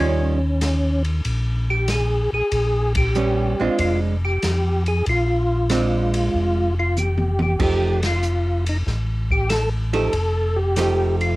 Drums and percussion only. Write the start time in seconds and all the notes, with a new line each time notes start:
0.61 snare, hi-hat pedal, ride
1.05 ride
1.25 kick, ride
1.88 snare, hi-hat pedal, ride
2.52 kick, ride
2.95 kick, ride
3.15 hi-hat pedal
3.79 kick, ride
4.42 snare, hi-hat pedal, ride
4.86 ride
5.06 kick, ride
5.70 snare, hi-hat pedal, ride
6.14 ride
6.34 kick
6.97 hi-hat pedal, high tom
7.18 high tom
7.39 high tom
7.60 kick, crash
8.03 snare, ride
8.22 hi-hat pedal
8.66 ride
8.87 kick, snare
9.30 kick
9.50 snare, hi-hat pedal, ride
9.93 ride
10.13 kick, ride
10.76 snare, hi-hat pedal, ride
11.21 ride